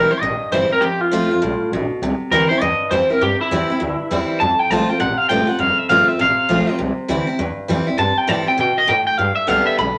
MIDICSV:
0, 0, Header, 1, 5, 480
1, 0, Start_track
1, 0, Key_signature, 0, "major"
1, 0, Tempo, 299103
1, 1318, Time_signature, 4, 2, 24, 8
1, 16016, End_track
2, 0, Start_track
2, 0, Title_t, "Clean electric guitar"
2, 0, Program_c, 0, 27
2, 0, Note_on_c, 0, 70, 89
2, 174, Note_off_c, 0, 70, 0
2, 174, Note_on_c, 0, 72, 81
2, 337, Note_off_c, 0, 72, 0
2, 337, Note_on_c, 0, 75, 89
2, 813, Note_off_c, 0, 75, 0
2, 839, Note_on_c, 0, 72, 79
2, 1126, Note_off_c, 0, 72, 0
2, 1163, Note_on_c, 0, 70, 96
2, 1295, Note_on_c, 0, 67, 96
2, 1326, Note_off_c, 0, 70, 0
2, 1620, Note_off_c, 0, 67, 0
2, 1620, Note_on_c, 0, 65, 104
2, 3013, Note_off_c, 0, 65, 0
2, 3716, Note_on_c, 0, 70, 95
2, 3987, Note_off_c, 0, 70, 0
2, 3994, Note_on_c, 0, 72, 82
2, 4194, Note_off_c, 0, 72, 0
2, 4194, Note_on_c, 0, 75, 90
2, 4660, Note_off_c, 0, 75, 0
2, 4664, Note_on_c, 0, 72, 83
2, 4982, Note_off_c, 0, 72, 0
2, 4982, Note_on_c, 0, 70, 81
2, 5155, Note_off_c, 0, 70, 0
2, 5174, Note_on_c, 0, 67, 105
2, 5452, Note_off_c, 0, 67, 0
2, 5475, Note_on_c, 0, 64, 101
2, 6859, Note_off_c, 0, 64, 0
2, 7060, Note_on_c, 0, 81, 118
2, 7371, Note_off_c, 0, 81, 0
2, 7371, Note_on_c, 0, 79, 96
2, 7550, Note_off_c, 0, 79, 0
2, 7550, Note_on_c, 0, 81, 97
2, 7856, Note_off_c, 0, 81, 0
2, 7856, Note_on_c, 0, 79, 88
2, 8024, Note_off_c, 0, 79, 0
2, 8030, Note_on_c, 0, 78, 94
2, 8306, Note_off_c, 0, 78, 0
2, 8306, Note_on_c, 0, 77, 94
2, 8483, Note_off_c, 0, 77, 0
2, 8490, Note_on_c, 0, 79, 85
2, 8804, Note_off_c, 0, 79, 0
2, 8804, Note_on_c, 0, 78, 104
2, 8984, Note_off_c, 0, 78, 0
2, 8984, Note_on_c, 0, 77, 108
2, 9281, Note_off_c, 0, 77, 0
2, 9281, Note_on_c, 0, 76, 94
2, 9454, Note_off_c, 0, 76, 0
2, 9460, Note_on_c, 0, 77, 88
2, 9759, Note_off_c, 0, 77, 0
2, 9759, Note_on_c, 0, 76, 87
2, 9941, Note_off_c, 0, 76, 0
2, 9968, Note_on_c, 0, 77, 105
2, 10891, Note_off_c, 0, 77, 0
2, 12820, Note_on_c, 0, 81, 107
2, 13122, Note_off_c, 0, 81, 0
2, 13122, Note_on_c, 0, 79, 100
2, 13299, Note_off_c, 0, 79, 0
2, 13299, Note_on_c, 0, 81, 92
2, 13593, Note_off_c, 0, 81, 0
2, 13613, Note_on_c, 0, 79, 93
2, 13788, Note_off_c, 0, 79, 0
2, 13811, Note_on_c, 0, 79, 97
2, 14088, Note_on_c, 0, 75, 101
2, 14090, Note_off_c, 0, 79, 0
2, 14259, Note_on_c, 0, 79, 89
2, 14266, Note_off_c, 0, 75, 0
2, 14534, Note_off_c, 0, 79, 0
2, 14553, Note_on_c, 0, 79, 107
2, 14728, Note_off_c, 0, 79, 0
2, 14728, Note_on_c, 0, 77, 103
2, 15007, Note_off_c, 0, 77, 0
2, 15013, Note_on_c, 0, 76, 88
2, 15213, Note_off_c, 0, 76, 0
2, 15213, Note_on_c, 0, 77, 101
2, 15506, Note_off_c, 0, 77, 0
2, 15512, Note_on_c, 0, 76, 90
2, 15699, Note_off_c, 0, 76, 0
2, 15706, Note_on_c, 0, 83, 91
2, 16016, Note_off_c, 0, 83, 0
2, 16016, End_track
3, 0, Start_track
3, 0, Title_t, "Steel-string acoustic guitar"
3, 0, Program_c, 1, 25
3, 0, Note_on_c, 1, 48, 85
3, 0, Note_on_c, 1, 55, 97
3, 0, Note_on_c, 1, 60, 108
3, 163, Note_off_c, 1, 55, 0
3, 166, Note_off_c, 1, 60, 0
3, 169, Note_on_c, 1, 64, 60
3, 193, Note_on_c, 1, 60, 51
3, 320, Note_off_c, 1, 48, 0
3, 347, Note_off_c, 1, 64, 0
3, 360, Note_off_c, 1, 60, 0
3, 364, Note_on_c, 1, 43, 94
3, 834, Note_on_c, 1, 52, 90
3, 844, Note_on_c, 1, 55, 95
3, 852, Note_on_c, 1, 60, 89
3, 861, Note_on_c, 1, 64, 100
3, 1097, Note_off_c, 1, 64, 0
3, 1116, Note_on_c, 1, 64, 54
3, 1121, Note_off_c, 1, 52, 0
3, 1126, Note_off_c, 1, 55, 0
3, 1129, Note_off_c, 1, 60, 0
3, 1148, Note_on_c, 1, 60, 44
3, 1284, Note_off_c, 1, 43, 0
3, 1301, Note_off_c, 1, 64, 0
3, 1311, Note_on_c, 1, 41, 74
3, 1317, Note_off_c, 1, 60, 0
3, 1788, Note_on_c, 1, 53, 97
3, 1803, Note_on_c, 1, 57, 104
3, 1812, Note_on_c, 1, 60, 116
3, 1824, Note_on_c, 1, 65, 117
3, 2077, Note_off_c, 1, 53, 0
3, 2082, Note_off_c, 1, 65, 0
3, 2085, Note_off_c, 1, 57, 0
3, 2089, Note_off_c, 1, 60, 0
3, 2101, Note_on_c, 1, 65, 61
3, 2124, Note_on_c, 1, 60, 49
3, 2237, Note_off_c, 1, 41, 0
3, 2273, Note_off_c, 1, 65, 0
3, 2275, Note_on_c, 1, 45, 83
3, 2284, Note_off_c, 1, 60, 0
3, 2737, Note_off_c, 1, 45, 0
3, 2777, Note_on_c, 1, 47, 88
3, 3228, Note_off_c, 1, 47, 0
3, 3252, Note_on_c, 1, 48, 91
3, 3721, Note_on_c, 1, 52, 105
3, 3731, Note_on_c, 1, 55, 97
3, 3735, Note_on_c, 1, 60, 102
3, 3752, Note_on_c, 1, 64, 111
3, 4003, Note_off_c, 1, 52, 0
3, 4006, Note_off_c, 1, 64, 0
3, 4008, Note_off_c, 1, 55, 0
3, 4010, Note_off_c, 1, 60, 0
3, 4025, Note_on_c, 1, 64, 75
3, 4051, Note_on_c, 1, 60, 45
3, 4167, Note_off_c, 1, 48, 0
3, 4194, Note_off_c, 1, 64, 0
3, 4195, Note_on_c, 1, 43, 97
3, 4207, Note_off_c, 1, 60, 0
3, 4669, Note_on_c, 1, 52, 87
3, 4681, Note_on_c, 1, 55, 98
3, 4684, Note_on_c, 1, 60, 100
3, 4696, Note_on_c, 1, 64, 98
3, 4955, Note_off_c, 1, 64, 0
3, 4957, Note_off_c, 1, 52, 0
3, 4963, Note_off_c, 1, 55, 0
3, 4964, Note_off_c, 1, 60, 0
3, 4974, Note_on_c, 1, 64, 59
3, 5008, Note_on_c, 1, 60, 54
3, 5118, Note_off_c, 1, 43, 0
3, 5149, Note_off_c, 1, 64, 0
3, 5157, Note_on_c, 1, 48, 86
3, 5166, Note_off_c, 1, 60, 0
3, 5636, Note_on_c, 1, 52, 98
3, 5649, Note_on_c, 1, 55, 103
3, 5658, Note_on_c, 1, 60, 102
3, 5665, Note_on_c, 1, 64, 96
3, 5918, Note_off_c, 1, 64, 0
3, 5920, Note_off_c, 1, 52, 0
3, 5926, Note_off_c, 1, 55, 0
3, 5931, Note_off_c, 1, 60, 0
3, 5938, Note_on_c, 1, 64, 66
3, 5966, Note_on_c, 1, 60, 53
3, 6079, Note_off_c, 1, 48, 0
3, 6097, Note_on_c, 1, 43, 81
3, 6110, Note_off_c, 1, 64, 0
3, 6124, Note_off_c, 1, 60, 0
3, 6589, Note_on_c, 1, 52, 80
3, 6598, Note_on_c, 1, 55, 101
3, 6612, Note_on_c, 1, 60, 96
3, 6624, Note_on_c, 1, 64, 99
3, 7028, Note_off_c, 1, 43, 0
3, 7053, Note_off_c, 1, 52, 0
3, 7057, Note_off_c, 1, 55, 0
3, 7064, Note_off_c, 1, 60, 0
3, 7070, Note_off_c, 1, 64, 0
3, 7078, Note_on_c, 1, 41, 80
3, 7555, Note_on_c, 1, 53, 94
3, 7564, Note_on_c, 1, 57, 99
3, 7574, Note_on_c, 1, 60, 104
3, 7581, Note_on_c, 1, 65, 114
3, 7824, Note_off_c, 1, 65, 0
3, 7838, Note_off_c, 1, 53, 0
3, 7843, Note_off_c, 1, 57, 0
3, 7843, Note_on_c, 1, 65, 60
3, 7848, Note_off_c, 1, 60, 0
3, 7877, Note_on_c, 1, 60, 47
3, 7998, Note_off_c, 1, 41, 0
3, 8019, Note_on_c, 1, 48, 90
3, 8022, Note_off_c, 1, 65, 0
3, 8039, Note_off_c, 1, 60, 0
3, 8496, Note_on_c, 1, 53, 100
3, 8511, Note_on_c, 1, 57, 91
3, 8517, Note_on_c, 1, 60, 102
3, 8519, Note_on_c, 1, 65, 100
3, 8759, Note_off_c, 1, 65, 0
3, 8778, Note_on_c, 1, 65, 66
3, 8789, Note_off_c, 1, 53, 0
3, 8796, Note_off_c, 1, 57, 0
3, 8796, Note_off_c, 1, 60, 0
3, 8815, Note_on_c, 1, 60, 49
3, 8949, Note_off_c, 1, 48, 0
3, 8966, Note_on_c, 1, 41, 92
3, 8969, Note_off_c, 1, 65, 0
3, 8988, Note_off_c, 1, 60, 0
3, 9457, Note_on_c, 1, 53, 98
3, 9468, Note_on_c, 1, 57, 95
3, 9484, Note_on_c, 1, 60, 99
3, 9489, Note_on_c, 1, 65, 106
3, 9737, Note_off_c, 1, 65, 0
3, 9749, Note_off_c, 1, 53, 0
3, 9754, Note_off_c, 1, 57, 0
3, 9757, Note_on_c, 1, 65, 56
3, 9762, Note_off_c, 1, 60, 0
3, 9786, Note_on_c, 1, 60, 52
3, 9901, Note_off_c, 1, 41, 0
3, 9937, Note_on_c, 1, 48, 96
3, 9938, Note_off_c, 1, 65, 0
3, 9953, Note_off_c, 1, 60, 0
3, 10411, Note_on_c, 1, 53, 96
3, 10429, Note_on_c, 1, 57, 88
3, 10435, Note_on_c, 1, 60, 100
3, 10443, Note_on_c, 1, 65, 86
3, 10687, Note_off_c, 1, 65, 0
3, 10706, Note_off_c, 1, 53, 0
3, 10706, Note_on_c, 1, 65, 63
3, 10715, Note_off_c, 1, 57, 0
3, 10718, Note_off_c, 1, 60, 0
3, 10735, Note_on_c, 1, 60, 54
3, 10867, Note_off_c, 1, 48, 0
3, 10889, Note_on_c, 1, 48, 79
3, 10893, Note_off_c, 1, 65, 0
3, 10907, Note_off_c, 1, 60, 0
3, 11368, Note_on_c, 1, 52, 96
3, 11376, Note_on_c, 1, 55, 104
3, 11392, Note_on_c, 1, 60, 98
3, 11400, Note_on_c, 1, 64, 103
3, 11646, Note_off_c, 1, 64, 0
3, 11664, Note_off_c, 1, 52, 0
3, 11665, Note_on_c, 1, 64, 66
3, 11668, Note_off_c, 1, 55, 0
3, 11677, Note_off_c, 1, 60, 0
3, 11696, Note_on_c, 1, 60, 50
3, 11823, Note_off_c, 1, 48, 0
3, 11852, Note_off_c, 1, 64, 0
3, 11858, Note_on_c, 1, 43, 97
3, 11868, Note_off_c, 1, 60, 0
3, 12330, Note_on_c, 1, 52, 86
3, 12344, Note_on_c, 1, 55, 99
3, 12356, Note_on_c, 1, 60, 104
3, 12363, Note_on_c, 1, 64, 104
3, 12607, Note_off_c, 1, 64, 0
3, 12625, Note_off_c, 1, 52, 0
3, 12626, Note_on_c, 1, 64, 63
3, 12633, Note_off_c, 1, 55, 0
3, 12639, Note_off_c, 1, 60, 0
3, 12659, Note_on_c, 1, 60, 53
3, 12788, Note_off_c, 1, 43, 0
3, 12805, Note_on_c, 1, 48, 89
3, 12813, Note_off_c, 1, 64, 0
3, 12829, Note_off_c, 1, 60, 0
3, 13277, Note_on_c, 1, 52, 100
3, 13283, Note_on_c, 1, 55, 108
3, 13295, Note_on_c, 1, 60, 101
3, 13310, Note_on_c, 1, 64, 108
3, 13557, Note_off_c, 1, 64, 0
3, 13576, Note_on_c, 1, 64, 55
3, 13580, Note_off_c, 1, 52, 0
3, 13580, Note_off_c, 1, 60, 0
3, 13582, Note_off_c, 1, 55, 0
3, 13599, Note_on_c, 1, 60, 47
3, 13742, Note_off_c, 1, 48, 0
3, 13763, Note_on_c, 1, 47, 93
3, 13768, Note_off_c, 1, 64, 0
3, 13780, Note_off_c, 1, 60, 0
3, 14236, Note_off_c, 1, 47, 0
3, 14242, Note_on_c, 1, 45, 94
3, 14719, Note_off_c, 1, 45, 0
3, 14741, Note_on_c, 1, 43, 80
3, 15199, Note_on_c, 1, 50, 96
3, 15215, Note_on_c, 1, 55, 102
3, 15220, Note_on_c, 1, 59, 111
3, 15239, Note_on_c, 1, 67, 109
3, 15671, Note_off_c, 1, 43, 0
3, 15679, Note_off_c, 1, 50, 0
3, 15686, Note_off_c, 1, 55, 0
3, 15689, Note_off_c, 1, 59, 0
3, 15699, Note_off_c, 1, 67, 0
3, 15703, Note_on_c, 1, 50, 83
3, 16016, Note_off_c, 1, 50, 0
3, 16016, End_track
4, 0, Start_track
4, 0, Title_t, "Upright bass"
4, 0, Program_c, 2, 32
4, 343, Note_on_c, 2, 33, 81
4, 630, Note_off_c, 2, 33, 0
4, 826, Note_on_c, 2, 31, 84
4, 1112, Note_off_c, 2, 31, 0
4, 1296, Note_on_c, 2, 29, 91
4, 1582, Note_off_c, 2, 29, 0
4, 1794, Note_on_c, 2, 36, 93
4, 2071, Note_off_c, 2, 36, 0
4, 2279, Note_on_c, 2, 35, 79
4, 2562, Note_off_c, 2, 35, 0
4, 2754, Note_on_c, 2, 33, 84
4, 3043, Note_off_c, 2, 33, 0
4, 3237, Note_on_c, 2, 36, 96
4, 3524, Note_off_c, 2, 36, 0
4, 3708, Note_on_c, 2, 38, 94
4, 3999, Note_off_c, 2, 38, 0
4, 4198, Note_on_c, 2, 40, 83
4, 4485, Note_off_c, 2, 40, 0
4, 4672, Note_on_c, 2, 41, 95
4, 4961, Note_off_c, 2, 41, 0
4, 5156, Note_on_c, 2, 43, 97
4, 5443, Note_off_c, 2, 43, 0
4, 5637, Note_on_c, 2, 40, 105
4, 5923, Note_off_c, 2, 40, 0
4, 6122, Note_on_c, 2, 38, 84
4, 6406, Note_off_c, 2, 38, 0
4, 6598, Note_on_c, 2, 40, 100
4, 6883, Note_off_c, 2, 40, 0
4, 7083, Note_on_c, 2, 41, 95
4, 7366, Note_off_c, 2, 41, 0
4, 7548, Note_on_c, 2, 36, 93
4, 7838, Note_off_c, 2, 36, 0
4, 8032, Note_on_c, 2, 33, 83
4, 8320, Note_off_c, 2, 33, 0
4, 8503, Note_on_c, 2, 31, 92
4, 8782, Note_off_c, 2, 31, 0
4, 8968, Note_on_c, 2, 29, 94
4, 9264, Note_off_c, 2, 29, 0
4, 9463, Note_on_c, 2, 31, 93
4, 9743, Note_off_c, 2, 31, 0
4, 9948, Note_on_c, 2, 33, 84
4, 10227, Note_off_c, 2, 33, 0
4, 10416, Note_on_c, 2, 35, 94
4, 10711, Note_off_c, 2, 35, 0
4, 10905, Note_on_c, 2, 36, 95
4, 11188, Note_off_c, 2, 36, 0
4, 11375, Note_on_c, 2, 38, 100
4, 11661, Note_off_c, 2, 38, 0
4, 11859, Note_on_c, 2, 40, 79
4, 12153, Note_off_c, 2, 40, 0
4, 12344, Note_on_c, 2, 41, 98
4, 12613, Note_off_c, 2, 41, 0
4, 12811, Note_on_c, 2, 43, 96
4, 13103, Note_off_c, 2, 43, 0
4, 13298, Note_on_c, 2, 45, 90
4, 13583, Note_off_c, 2, 45, 0
4, 13779, Note_on_c, 2, 47, 85
4, 14062, Note_off_c, 2, 47, 0
4, 14268, Note_on_c, 2, 45, 91
4, 14552, Note_off_c, 2, 45, 0
4, 14747, Note_on_c, 2, 43, 88
4, 15026, Note_off_c, 2, 43, 0
4, 15220, Note_on_c, 2, 36, 95
4, 15515, Note_off_c, 2, 36, 0
4, 15698, Note_on_c, 2, 35, 91
4, 15995, Note_off_c, 2, 35, 0
4, 16016, End_track
5, 0, Start_track
5, 0, Title_t, "Muted upright bass strokes"
5, 640, Note_on_c, 9, 29, 68
5, 800, Note_off_c, 9, 29, 0
5, 1122, Note_on_c, 9, 29, 70
5, 1282, Note_off_c, 9, 29, 0
5, 1617, Note_on_c, 9, 29, 44
5, 1777, Note_off_c, 9, 29, 0
5, 2096, Note_on_c, 9, 29, 40
5, 2256, Note_off_c, 9, 29, 0
5, 2572, Note_on_c, 9, 29, 73
5, 2732, Note_off_c, 9, 29, 0
5, 3049, Note_on_c, 9, 29, 68
5, 3210, Note_off_c, 9, 29, 0
5, 3536, Note_on_c, 9, 29, 75
5, 3696, Note_off_c, 9, 29, 0
5, 4007, Note_on_c, 9, 29, 77
5, 4168, Note_off_c, 9, 29, 0
5, 4494, Note_on_c, 9, 29, 72
5, 4654, Note_off_c, 9, 29, 0
5, 4976, Note_on_c, 9, 29, 76
5, 5137, Note_off_c, 9, 29, 0
5, 5456, Note_on_c, 9, 29, 70
5, 5616, Note_off_c, 9, 29, 0
5, 5933, Note_on_c, 9, 29, 68
5, 6094, Note_off_c, 9, 29, 0
5, 6425, Note_on_c, 9, 29, 70
5, 6585, Note_off_c, 9, 29, 0
5, 6900, Note_on_c, 9, 29, 69
5, 7061, Note_off_c, 9, 29, 0
5, 7373, Note_on_c, 9, 29, 67
5, 7534, Note_off_c, 9, 29, 0
5, 7850, Note_on_c, 9, 29, 70
5, 8011, Note_off_c, 9, 29, 0
5, 8327, Note_on_c, 9, 29, 66
5, 8487, Note_off_c, 9, 29, 0
5, 9273, Note_on_c, 9, 29, 74
5, 9434, Note_off_c, 9, 29, 0
5, 10237, Note_on_c, 9, 29, 70
5, 10397, Note_off_c, 9, 29, 0
5, 11197, Note_on_c, 9, 29, 77
5, 11358, Note_off_c, 9, 29, 0
5, 12159, Note_on_c, 9, 29, 70
5, 12320, Note_off_c, 9, 29, 0
5, 13112, Note_on_c, 9, 29, 72
5, 13273, Note_off_c, 9, 29, 0
5, 13593, Note_on_c, 9, 29, 69
5, 13754, Note_off_c, 9, 29, 0
5, 14072, Note_on_c, 9, 29, 64
5, 14232, Note_off_c, 9, 29, 0
5, 14562, Note_on_c, 9, 29, 72
5, 14722, Note_off_c, 9, 29, 0
5, 15035, Note_on_c, 9, 29, 70
5, 15196, Note_off_c, 9, 29, 0
5, 15522, Note_on_c, 9, 29, 67
5, 15682, Note_off_c, 9, 29, 0
5, 16016, End_track
0, 0, End_of_file